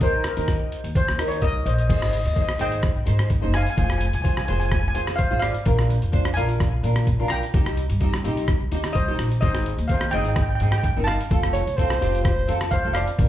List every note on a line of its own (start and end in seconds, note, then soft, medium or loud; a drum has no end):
0.00 0.31 D#2 loud
0.00 0.22 D#4 medium
0.00 0.22 G4 medium
0.00 0.23 A#4 medium
0.00 0.24 C5 medium
0.00 kick loud
0.00 closed hi-hat medium
0.24 0.48 A#4 medium
0.24 cross-stick medium
0.24 closed hi-hat medium
0.36 0.57 D#2 medium
0.36 0.86 D#4 medium
0.36 0.86 G4 medium
0.36 0.86 A#4 medium
0.36 closed hi-hat medium
0.48 kick medium
0.48 cross-stick medium
0.48 closed hi-hat medium
0.72 closed hi-hat medium
0.84 1.04 D#2 medium
0.84 closed hi-hat medium
0.95 1.28 C5 medium
0.95 kick loud
0.95 closed hi-hat medium
1.07 1.42 D#2 medium
1.07 cross-stick medium
1.18 1.61 D#4 medium
1.18 1.61 G4 medium
1.18 1.61 A#4 medium
1.18 cross-stick loud
1.18 closed hi-hat loud
1.28 1.43 C#5 medium
1.28 closed hi-hat medium
1.42 1.63 C2 medium
1.42 1.64 A#4 medium
1.42 1.44 D#5 medium
1.42 1.65 D#5 loud
1.42 kick medium
1.42 closed hi-hat medium
1.66 1.87 A#1 medium
1.66 1.74 C5 medium
1.66 1.73 D#5 medium
1.66 closed hi-hat medium
1.74 1.80 D#5 medium
1.79 1.86 D#5 medium
1.79 closed hi-hat medium
1.88 2.20 G#1 loud
1.88 2.18 D#4 medium
1.88 2.18 G#4 medium
1.88 2.18 C5 medium
1.88 1.95 D#5 medium
1.88 kick loud
1.88 closed hi-hat medium
1.88 crash loud
1.96 2.03 D#5 medium
2.02 2.10 D#5 soft
2.02 cross-stick medium
2.11 2.17 D#5 medium
2.11 closed hi-hat medium
2.18 2.25 D#5 medium
2.25 2.62 D#2 medium
2.25 2.33 D#5 medium
2.25 closed hi-hat medium
2.34 2.50 D#4 medium
2.34 2.51 G#4 medium
2.34 2.51 C5 medium
2.34 2.40 D#5 medium
2.34 kick medium
2.34 closed hi-hat medium
2.41 2.48 D#5 medium
2.49 cross-stick medium
2.59 3.00 G#1 medium
2.59 2.88 D#4 medium
2.59 2.88 G#4 medium
2.59 2.88 C5 medium
2.59 3.51 D#5 medium
2.59 3.57 G5 loud
2.59 closed hi-hat medium
2.72 closed hi-hat medium
2.83 kick loud
2.83 cross-stick medium
2.83 closed hi-hat medium
3.05 3.37 G#2 medium
3.05 3.27 D#4 medium
3.05 3.28 G#4 medium
3.05 3.28 C5 medium
3.05 closed hi-hat loud
3.19 cross-stick medium
3.19 closed hi-hat medium
3.30 kick medium
3.30 closed hi-hat medium
3.41 3.63 F#1 medium
3.41 3.63 D#4 medium
3.41 3.63 G#4 medium
3.41 3.64 C5 medium
3.54 3.63 F5 medium
3.54 3.61 G#5 medium
3.54 cross-stick medium
3.54 closed hi-hat medium
3.63 3.69 G#5 medium
3.63 closed hi-hat medium
3.70 3.76 G#5 medium
3.76 4.08 F1 loud
3.76 4.06 F4 medium
3.76 4.06 G#4 medium
3.76 4.06 C5 medium
3.76 3.83 G#5 medium
3.76 kick loud
3.76 closed hi-hat medium
3.84 3.91 G#5 medium
3.90 3.97 G#5 medium
3.90 cross-stick medium
3.98 4.05 G#5 medium
3.98 closed hi-hat loud
4.06 4.13 G#5 medium
4.13 4.50 C2 medium
4.13 4.21 G#5 medium
4.13 closed hi-hat medium
4.22 4.39 F4 medium
4.22 4.39 G#4 medium
4.22 4.39 C5 medium
4.22 4.28 G#5 medium
4.22 kick medium
4.22 closed hi-hat medium
4.29 4.36 G#5 medium
4.37 4.44 G#5 medium
4.37 cross-stick medium
4.45 4.88 F1 medium
4.45 4.76 F4 medium
4.45 4.76 G#4 medium
4.45 4.77 C5 medium
4.45 4.51 G#5 medium
4.45 closed hi-hat medium
4.52 4.58 G#5 medium
4.60 4.64 G#5 medium
4.60 closed hi-hat medium
4.65 4.71 G#5 medium
4.72 4.79 G#5 medium
4.72 kick loud
4.72 cross-stick loud
4.72 closed hi-hat medium
4.80 4.87 G#5 medium
4.88 4.94 G#5 medium
4.94 5.25 F2 loud
4.94 5.16 F4 medium
4.94 5.16 G#4 medium
4.94 5.17 C5 medium
4.94 5.03 G#5 medium
4.94 closed hi-hat medium
5.07 cross-stick medium
5.07 closed hi-hat medium
5.16 5.40 C5 medium
5.16 5.38 F5 loud
5.16 kick medium
5.16 closed hi-hat medium
5.30 5.51 G#1 loud
5.30 5.52 F4 medium
5.30 5.52 G#4 medium
5.30 5.52 C5 medium
5.40 6.32 D5 medium
5.40 6.36 F5 loud
5.40 cross-stick medium
5.40 closed hi-hat medium
5.55 closed hi-hat medium
5.65 5.96 A#1 loud
5.65 5.94 D4 medium
5.65 5.94 F4 medium
5.65 5.94 A#4 medium
5.65 kick loud
5.65 closed hi-hat medium
5.79 cross-stick medium
5.90 closed hi-hat medium
6.02 6.38 F2 medium
6.02 closed hi-hat medium
6.12 6.27 D4 medium
6.12 6.27 F4 medium
6.12 6.28 C5 loud
6.12 kick medium
6.12 closed hi-hat medium
6.25 cross-stick loud
6.34 6.76 A#1 medium
6.34 6.65 D4 medium
6.34 6.65 F4 medium
6.34 6.65 A#4 medium
6.34 7.27 F5 medium
6.34 7.32 G#5 loud
6.34 closed hi-hat medium
6.49 closed hi-hat medium
6.60 kick loud
6.60 cross-stick medium
6.60 closed hi-hat medium
6.83 7.14 A#2 loud
6.83 7.05 D4 medium
6.83 7.05 F4 medium
6.83 7.05 A#4 medium
6.83 closed hi-hat medium
6.96 cross-stick medium
6.96 closed hi-hat medium
7.07 kick medium
7.07 closed hi-hat medium
7.19 7.39 B1 loud
7.19 7.40 D4 medium
7.19 7.41 F4 medium
7.19 7.41 A#4 medium
7.28 8.92 G5 medium
7.28 8.99 A#5 loud
7.28 cross-stick medium
7.28 closed hi-hat medium
7.43 closed hi-hat medium
7.54 7.84 C2 loud
7.54 7.83 C4 medium
7.54 7.83 D#4 medium
7.54 7.83 G4 medium
7.54 kick loud
7.54 closed hi-hat medium
7.66 cross-stick medium
7.77 closed hi-hat medium
7.90 8.26 G2 medium
7.90 closed hi-hat medium
8.00 8.15 C4 medium
8.00 8.16 D#4 medium
8.00 8.16 G4 medium
8.00 kick medium
8.00 closed hi-hat medium
8.14 cross-stick loud
8.24 8.64 C2 medium
8.24 8.53 C4 medium
8.24 8.53 D#4 medium
8.24 8.54 G4 loud
8.24 closed hi-hat medium
8.37 closed hi-hat medium
8.48 kick loud
8.48 cross-stick medium
8.48 closed hi-hat medium
8.71 8.93 D#2 medium
8.71 8.93 C4 medium
8.71 8.93 D#4 medium
8.71 8.93 G4 medium
8.71 closed hi-hat loud
8.84 cross-stick medium
8.84 closed hi-hat medium
8.93 9.16 C2 medium
8.93 9.39 C5 medium
8.93 9.40 D#5 medium
8.93 kick medium
8.93 closed hi-hat medium
9.07 9.29 C4 medium
9.07 9.29 D#4 medium
9.07 9.29 G4 medium
9.19 9.40 A#1 medium
9.19 cross-stick medium
9.19 closed hi-hat medium
9.32 closed hi-hat medium
9.41 9.72 G#1 loud
9.41 9.71 C4 medium
9.41 9.71 D#4 medium
9.41 9.72 G#4 medium
9.41 9.87 C5 medium
9.41 9.90 D#5 loud
9.41 kick loud
9.41 closed hi-hat medium
9.55 cross-stick medium
9.66 closed hi-hat medium
9.78 10.15 D#2 medium
9.78 closed hi-hat medium
9.88 10.04 C4 medium
9.88 10.05 D#4 medium
9.88 10.05 G#4 medium
9.88 10.02 C5 medium
9.88 9.99 F5 medium
9.88 kick medium
9.88 closed hi-hat medium
10.01 cross-stick loud
10.11 10.53 G#1 medium
10.11 10.41 C4 medium
10.11 10.41 D#4 medium
10.11 10.41 G#4 medium
10.11 10.21 D#5 medium
10.11 10.17 G5 loud
10.11 closed hi-hat medium
10.18 10.27 G5 medium
10.25 10.33 G5 medium
10.25 closed hi-hat medium
10.35 10.41 G5 medium
10.35 kick loud
10.35 cross-stick medium
10.35 closed hi-hat medium
10.42 10.48 G5 medium
10.49 10.54 G5 medium
10.55 10.62 G5 medium
10.60 10.91 G#2 medium
10.60 10.81 C4 medium
10.60 10.82 D#4 medium
10.60 10.82 G#4 medium
10.60 10.70 G5 medium
10.60 closed hi-hat medium
10.71 10.77 G5 medium
10.71 cross-stick medium
10.71 closed hi-hat medium
10.78 10.84 G5 medium
10.84 10.95 G5 medium
10.84 kick medium
10.84 closed hi-hat medium
10.96 11.16 G1 medium
10.96 11.17 C4 medium
10.96 11.17 D#4 medium
10.96 11.18 A#4 medium
11.04 12.68 F5 medium
11.04 12.66 A5 loud
11.04 cross-stick medium
11.04 closed hi-hat medium
11.21 closed hi-hat medium
11.31 11.61 F1 loud
11.31 11.59 C4 medium
11.31 11.59 F4 medium
11.31 11.60 A4 medium
11.31 kick loud
11.31 closed hi-hat medium
11.43 cross-stick medium
11.53 11.78 C#5 loud
11.53 closed hi-hat medium
11.67 12.04 C2 medium
11.67 closed hi-hat medium
11.77 11.93 C4 medium
11.77 11.93 F4 medium
11.77 11.93 A4 medium
11.77 12.23 C5 loud
11.77 kick medium
11.77 closed hi-hat medium
11.90 cross-stick loud
12.01 12.41 F1 medium
12.01 12.29 C4 medium
12.01 12.30 F4 medium
12.01 12.30 G4 loud
12.01 closed hi-hat medium
12.15 closed hi-hat medium
12.23 12.57 C5 medium
12.23 kick loud
12.23 cross-stick medium
12.23 closed hi-hat medium
12.48 12.78 F2 medium
12.48 12.69 C4 medium
12.48 12.69 F4 medium
12.48 12.70 A4 medium
12.48 closed hi-hat loud
12.61 cross-stick medium
12.61 closed hi-hat medium
12.71 12.94 C5 medium
12.71 12.92 F5 loud
12.71 kick medium
12.71 closed hi-hat medium
12.84 13.04 F1 loud
12.84 13.05 C4 medium
12.84 13.05 F4 medium
12.84 13.06 A4 medium
12.93 13.29 D5 medium
12.93 13.29 F5 loud
12.93 cross-stick medium
12.93 closed hi-hat medium
13.08 closed hi-hat medium
13.19 13.29 A#1 loud
13.19 13.29 D4 medium
13.19 13.29 F4 medium
13.19 13.29 A#4 medium
13.19 kick loud
13.19 closed hi-hat medium